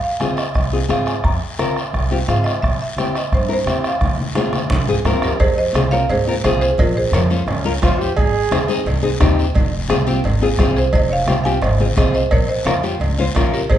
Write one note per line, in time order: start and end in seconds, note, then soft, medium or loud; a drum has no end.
0.04 0.20 F5 medium
0.20 0.39 C4 medium
0.20 0.39 F4 medium
0.20 0.39 G#4 medium
0.20 0.36 G#5 medium
0.20 bombo rim medium
0.20 high conga medium
0.20 short guiro medium
0.37 0.45 D#5 medium
0.37 bombo rim medium
0.37 short guiro medium
0.54 0.83 C2 medium
0.54 0.91 D#5 medium
0.54 bombo low medium
0.54 bombo rim medium
0.54 high conga soft
0.54 long guiro medium
0.72 0.78 C4 medium
0.72 0.78 F4 medium
0.72 0.79 G#4 medium
0.88 1.17 G#2 medium
0.88 1.13 C4 medium
0.88 1.13 F4 medium
0.88 1.14 G#4 medium
0.88 0.98 F5 medium
0.88 bombo rim medium
0.88 high conga medium
0.88 short guiro medium
1.06 1.15 G#5 medium
1.06 bombo rim medium
1.06 short guiro medium
1.24 1.38 F2 medium
1.24 1.90 A#5 medium
1.24 bombo low medium
1.24 bombo rim medium
1.24 high conga soft
1.24 long guiro medium
1.59 1.77 C4 medium
1.59 1.77 F4 medium
1.59 1.77 A#4 medium
1.59 bombo rim medium
1.59 high conga medium
1.59 short guiro medium
1.76 bombo rim medium
1.76 short guiro medium
1.93 2.21 C2 medium
1.93 bombo low medium
1.93 bombo rim medium
1.93 high conga soft
1.93 long guiro medium
2.11 2.17 C4 medium
2.11 2.18 F4 medium
2.11 2.17 G4 medium
2.28 2.56 G#2 medium
2.28 2.52 C4 medium
2.28 2.53 F4 medium
2.28 2.53 G#4 medium
2.28 2.36 F5 medium
2.28 bombo rim medium
2.28 high conga medium
2.28 short guiro medium
2.44 2.52 D#5 medium
2.44 bombo rim medium
2.44 short guiro medium
2.62 2.77 C2 medium
2.62 2.81 E5 loud
2.62 bombo low medium
2.62 bombo rim medium
2.62 high conga soft
2.62 long guiro medium
2.82 3.13 E5 medium
2.97 3.16 C4 medium
2.97 3.16 E4 medium
2.97 3.16 G4 medium
2.97 bombo rim medium
2.97 high conga medium
2.97 short guiro medium
3.15 3.24 D#5 medium
3.15 bombo rim medium
3.15 short guiro medium
3.32 3.60 G2 medium
3.32 3.42 C5 medium
3.32 bombo low medium
3.32 bombo rim medium
3.32 high conga soft
3.32 long guiro medium
3.48 3.55 C4 medium
3.48 3.55 E4 medium
3.48 3.55 A#4 medium
3.53 3.69 C5 medium
3.66 3.94 E2 medium
3.66 3.91 C4 medium
3.66 3.91 E4 medium
3.66 3.91 G4 medium
3.66 3.77 E5 medium
3.66 bombo rim medium
3.66 high conga medium
3.66 short guiro medium
3.84 5.03 F5 medium
3.84 bombo rim medium
3.84 short guiro medium
4.01 4.15 F2 medium
4.01 bombo low medium
4.01 bombo rim medium
4.01 high conga medium
4.01 long guiro medium
4.18 high conga medium
4.35 4.54 C4 medium
4.35 4.54 F4 medium
4.35 4.54 G#4 medium
4.35 bombo rim medium
4.35 high conga loud
4.35 short guiro medium
4.53 bombo rim medium
4.53 high conga medium
4.53 short guiro medium
4.70 4.85 C2 medium
4.70 bombo low medium
4.70 bombo rim medium
4.70 low conga medium
4.70 long guiro medium
4.87 5.03 G#2 medium
4.87 4.94 C4 medium
4.87 4.94 F4 medium
4.87 4.95 G#4 medium
4.87 low conga medium
5.05 5.21 G2 medium
5.05 5.30 C4 medium
5.05 5.30 F4 medium
5.05 5.30 A#4 medium
5.05 bombo rim medium
5.05 low conga medium
5.05 short guiro medium
5.22 5.38 F2 medium
5.22 5.40 G4 medium
5.22 5.41 A#4 medium
5.22 bombo rim medium
5.22 low conga medium
5.22 short guiro medium
5.40 5.68 F2 medium
5.40 5.49 G#4 medium
5.40 5.48 C5 loud
5.40 bombo low medium
5.40 cowbell loud
5.40 long guiro medium
5.58 5.91 C5 medium
5.58 5.93 D#5 loud
5.73 6.01 C2 loud
5.73 5.81 C4 medium
5.73 5.81 F4 medium
5.73 5.81 G#4 medium
5.73 bombo rim medium
5.73 cowbell medium
5.73 high conga medium
5.73 short guiro medium
5.91 6.04 C4 medium
5.91 6.04 F4 medium
5.91 6.05 A#4 medium
5.91 6.00 C#5 medium
5.91 5.99 F5 loud
5.91 short guiro medium
6.09 6.37 G#2 medium
6.09 6.43 G#4 medium
6.09 6.42 C5 medium
6.09 cowbell medium
6.09 low conga medium
6.09 long guiro medium
6.27 6.33 C4 medium
6.27 6.33 F4 medium
6.27 6.33 A#4 medium
6.44 6.72 C2 medium
6.44 6.69 C4 medium
6.44 6.69 F4 medium
6.44 6.61 G#4 medium
6.44 6.69 G#4 medium
6.44 6.60 C5 medium
6.44 bombo low medium
6.44 bombo rim medium
6.44 cowbell medium
6.44 high conga medium
6.44 short guiro medium
6.61 6.70 G#4 medium
6.61 6.69 C5 medium
6.61 short guiro medium
6.78 7.07 A#1 loud
6.78 6.95 F4 medium
6.78 6.95 A#4 medium
6.78 bombo low medium
6.78 cowbell loud
6.78 low conga medium
6.78 long guiro medium
6.97 7.05 G#4 medium
6.97 7.05 C5 medium
7.12 7.40 F2 loud
7.12 7.19 C#4 medium
7.12 7.20 F4 medium
7.12 7.20 A#4 medium
7.12 7.96 A#4 medium
7.12 7.96 C#5 medium
7.12 bombo rim medium
7.12 cowbell medium
7.12 high conga medium
7.12 short guiro medium
7.30 7.42 C#4 medium
7.30 7.43 F4 medium
7.30 7.43 C5 medium
7.30 short guiro medium
7.47 7.75 C#2 medium
7.47 7.80 C#4 medium
7.47 bombo rim medium
7.47 cowbell medium
7.47 low conga medium
7.47 long guiro medium
7.65 7.71 C#4 medium
7.65 7.71 F4 medium
7.65 7.71 A#4 medium
7.82 8.10 F2 medium
7.82 8.07 C#4 medium
7.82 8.02 F4 loud
7.82 8.07 F4 medium
7.82 8.07 C5 medium
7.82 bombo low medium
7.82 bombo rim medium
7.82 cowbell medium
7.82 high conga medium
7.82 low conga medium
7.82 low timbale medium
7.82 short guiro medium
8.01 8.16 G4 loud
8.01 short guiro medium
8.16 8.45 G#1 medium
8.16 8.82 G#4 loud
8.16 bombo low medium
8.16 cowbell loud
8.16 long guiro medium
8.51 8.79 D#2 loud
8.51 8.57 C4 medium
8.51 8.58 D#4 medium
8.51 8.58 G#4 loud
8.51 bombo rim medium
8.51 cowbell medium
8.51 high conga medium
8.51 short guiro medium
8.68 8.81 C4 medium
8.68 8.81 D#4 medium
8.68 8.81 G#4 medium
8.68 short guiro medium
8.85 9.13 C2 medium
8.85 cowbell medium
8.85 low conga medium
8.85 long guiro medium
9.02 9.09 C4 medium
9.02 9.09 D#4 medium
9.02 9.09 G#4 medium
9.20 9.49 D#2 medium
9.20 9.45 C4 medium
9.20 9.45 D#4 medium
9.20 9.45 G4 loud
9.20 bombo low medium
9.20 bombo rim medium
9.20 cowbell medium
9.20 high conga medium
9.20 low timbale medium
9.20 short guiro medium
9.39 short guiro medium
9.55 9.83 F1 loud
9.55 bombo low medium
9.55 cowbell loud
9.55 low conga medium
9.55 long guiro medium
9.88 10.17 C2 loud
9.88 9.96 C4 medium
9.88 9.96 F4 medium
9.88 9.96 G#4 loud
9.88 bombo rim medium
9.88 cowbell medium
9.88 high conga medium
9.88 short guiro medium
10.07 10.19 C4 medium
10.07 10.19 F4 medium
10.07 10.19 G4 medium
10.07 short guiro medium
10.24 10.52 G#1 medium
10.24 cowbell medium
10.24 low conga medium
10.24 long guiro medium
10.41 10.48 C4 medium
10.41 10.48 F4 medium
10.41 10.48 G#4 medium
10.58 10.87 C2 medium
10.58 10.83 C4 medium
10.58 10.83 F4 medium
10.58 10.84 G#4 loud
10.58 bombo low medium
10.58 bombo rim medium
10.58 cowbell medium
10.58 high conga medium
10.58 low conga medium
10.58 low timbale medium
10.58 short guiro medium
10.76 10.93 G#4 medium
10.76 10.92 C5 medium
10.76 short guiro medium
10.93 11.21 F1 loud
10.93 11.01 C5 medium
10.93 11.03 D#5 loud
10.93 bombo low medium
10.93 cowbell loud
10.93 long guiro medium
11.11 11.43 C#5 medium
11.11 11.43 F5 loud
11.27 11.55 C2 loud
11.27 11.34 C4 medium
11.27 11.34 F4 medium
11.27 11.35 G4 medium
11.27 bombo rim medium
11.27 cowbell medium
11.27 high conga medium
11.27 short guiro medium
11.44 11.57 C4 medium
11.44 11.58 F4 medium
11.44 11.58 G4 medium
11.44 11.52 F5 medium
11.44 11.53 G#5 loud
11.44 short guiro medium
11.61 11.90 G#1 medium
11.61 11.95 C5 medium
11.61 11.96 D#5 medium
11.61 bombo rim medium
11.61 cowbell medium
11.61 low conga medium
11.61 long guiro medium
11.79 11.86 C4 medium
11.79 11.86 F4 medium
11.79 11.86 G#4 medium
11.79 high conga medium
11.96 12.25 C2 medium
11.96 12.21 C4 medium
11.96 12.21 F4 medium
11.96 12.22 G#4 medium
11.96 12.13 C5 medium
11.96 12.14 D#5 loud
11.96 bombo low medium
11.96 bombo rim medium
11.96 cowbell medium
11.96 high conga medium
11.96 short guiro medium
12.14 12.30 C5 medium
12.14 12.33 D#5 medium
12.14 short guiro medium
12.31 12.59 A#1 medium
12.31 12.48 A#4 medium
12.31 12.48 C#5 loud
12.31 bombo low medium
12.31 cowbell loud
12.31 long guiro medium
12.49 12.57 C5 medium
12.49 12.57 D#5 medium
12.65 12.94 F2 medium
12.65 12.72 C#4 medium
12.65 12.73 F4 medium
12.65 12.73 A#4 medium
12.65 13.49 C#5 medium
12.65 13.49 F5 medium
12.65 bombo rim medium
12.65 cowbell medium
12.65 high conga medium
12.65 short guiro medium
12.83 12.96 C#4 medium
12.83 12.96 F4 medium
12.83 12.96 G4 medium
12.83 short guiro medium
13.00 13.28 C#2 medium
13.00 cowbell medium
13.00 low conga medium
13.00 long guiro medium
13.18 13.24 C#4 medium
13.18 13.25 F4 medium
13.18 13.25 C5 loud
13.18 high conga medium
13.35 13.63 A#1 medium
13.35 13.60 C#4 medium
13.35 13.60 F4 medium
13.35 13.60 A#4 loud
13.35 bombo low medium
13.35 bombo rim medium
13.35 cowbell medium
13.35 high conga medium
13.35 low timbale medium
13.35 short guiro medium
13.53 13.61 G4 medium
13.53 13.61 A#4 medium
13.53 short guiro medium
13.70 13.78 G#1 loud
13.70 13.78 G#4 medium
13.70 13.78 C5 loud
13.70 bombo low medium
13.70 cowbell loud
13.70 long guiro medium